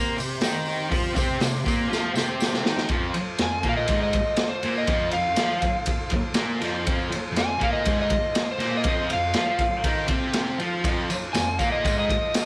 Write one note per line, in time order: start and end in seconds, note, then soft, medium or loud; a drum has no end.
0.00 0.15 A#3 medium
0.00 2.86 C4 medium
0.00 2.86 G4 medium
0.00 0.16 A#4 loud
0.00 2.86 C5 medium
0.16 0.36 C3 medium
0.16 open hi-hat medium
0.20 tambourine medium
0.41 0.89 D#3 medium
0.41 0.90 D#4 loud
0.41 snare loud
0.41 open hi-hat medium
0.41 tambourine medium
0.65 open hi-hat medium
0.90 1.14 F3 medium
0.90 1.15 F4 loud
0.90 kick loud
0.90 open hi-hat medium
1.14 1.38 C3 loud
1.14 1.40 C4 loud
1.14 kick loud
1.14 open hi-hat medium
1.14 tambourine medium
1.40 1.60 C3 medium
1.40 snare loud
1.40 open hi-hat medium
1.40 tambourine medium
1.54 snare soft
1.64 1.88 A#2 medium
1.64 1.89 A#3 loud
1.64 kick loud
1.64 open hi-hat medium
1.64 tambourine medium
1.89 2.13 F3 medium
1.89 2.14 F4 loud
1.89 snare medium
1.93 tambourine medium
2.14 2.63 C3 medium
2.14 2.63 C4 loud
2.14 snare medium
2.14 tambourine medium
2.40 snare medium
2.40 tambourine medium
2.54 snare medium
2.64 2.88 D#3 loud
2.64 2.89 D#4 loud
2.64 snare loud
2.64 tambourine soft
2.78 snare medium
2.88 3.12 F2 medium
2.88 3.13 F3 medium
2.88 kick loud
2.88 ride medium
2.92 6.83 F4 medium
2.92 6.84 A4 medium
2.92 6.84 C5 medium
3.14 muted distorted electric guitar stroke medium
3.14 ride medium
3.38 3.59 F2 medium
3.38 3.65 G#5 loud
3.38 snare loud
3.38 ride medium
3.63 3.87 A#2 loud
3.63 3.88 A#3 medium
3.63 kick medium
3.63 ride medium
3.69 3.77 F5 medium
3.77 4.00 D#5 medium
3.88 4.12 G#2 medium
3.88 4.12 G#3 loud
3.88 kick loud
3.88 ride medium
4.03 4.50 D#5 medium
4.13 kick medium
4.13 ride medium
4.36 snare loud
4.36 ride medium
4.49 4.74 C5 medium
4.63 4.87 A#2 medium
4.63 4.87 A#3 loud
4.63 ride medium
4.78 5.13 D#5 medium
4.87 5.11 F2 medium
4.87 5.12 F3 loud
4.87 kick loud
4.87 ride medium
5.11 5.32 F2 medium
5.11 6.09 F5 loud
5.11 ride medium
5.36 5.61 F3 medium
5.36 5.62 F4 medium
5.36 snare medium
5.36 ride medium
5.61 muted distorted electric guitar stroke medium
5.61 kick medium
5.61 ride medium
5.86 kick loud
5.86 ride medium
6.10 muted distorted electric guitar stroke medium
6.10 kick medium
6.10 ride medium
6.34 6.59 A#2 medium
6.34 6.60 A#3 medium
6.34 snare loud
6.34 ride medium
6.60 6.84 F2 medium
6.60 6.85 F3 medium
6.60 snare soft
6.60 ride medium
6.85 7.10 F2 medium
6.85 7.10 F3 medium
6.85 10.81 F4 medium
6.85 10.80 A4 medium
6.85 10.80 C5 medium
6.85 kick loud
6.85 ride medium
7.11 muted distorted electric guitar stroke medium
7.11 ride medium
7.33 7.54 F2 medium
7.33 ride medium
7.37 7.61 G#5 loud
7.37 snare loud
7.59 7.84 A#2 medium
7.59 7.85 A#3 loud
7.59 7.72 F5 medium
7.59 kick medium
7.59 ride medium
7.73 7.97 D#5 medium
7.85 8.10 G#2 medium
7.85 8.10 G#3 loud
7.85 kick loud
7.85 ride medium
8.02 8.48 D#5 medium
8.10 kick medium
8.10 ride medium
8.35 snare loud
8.35 ride medium
8.52 8.74 C5 medium
8.59 8.83 A#2 medium
8.59 8.84 A#3 loud
8.59 snare soft
8.59 ride medium
8.77 9.11 D#5 medium
8.84 9.10 F2 medium
8.84 9.10 F3 loud
8.84 kick loud
8.84 ride medium
9.10 9.30 F2 medium
9.10 10.08 F5 loud
9.10 ride medium
9.34 9.59 F3 medium
9.34 9.60 F4 loud
9.34 snare medium
9.34 ride medium
9.58 muted distorted electric guitar stroke medium
9.58 kick medium
9.58 ride medium
9.84 10.07 D#3 medium
9.84 10.08 D#4 loud
9.84 kick loud
9.84 ride medium
10.07 10.57 C3 medium
10.07 10.58 C4 loud
10.07 kick medium
10.07 ride medium
10.33 snare loud
10.33 ride medium
10.58 10.83 F3 medium
10.58 10.84 F4 loud
10.58 ride medium
10.84 11.08 F2 medium
10.84 11.09 F3 loud
10.84 12.45 F4 medium
10.84 12.45 A4 medium
10.84 kick loud
10.84 ride medium
10.89 12.45 C5 medium
11.10 muted distorted electric guitar stroke medium
11.10 ride medium
11.10 tambourine medium
11.33 11.54 F2 medium
11.33 11.58 G#5 medium
11.33 snare loud
11.33 ride medium
11.33 tambourine medium
11.59 11.83 A#2 medium
11.59 11.83 A#3 medium
11.59 11.71 F5 medium
11.59 kick medium
11.59 ride medium
11.59 tambourine medium
11.72 11.96 D#5 medium
11.83 12.07 G#2 medium
11.83 12.08 G#3 medium
11.83 kick loud
11.83 ride medium
11.87 tambourine medium
11.99 12.45 D#5 medium
12.09 kick medium
12.09 ride medium
12.34 snare loud
12.34 ride medium
12.34 tambourine medium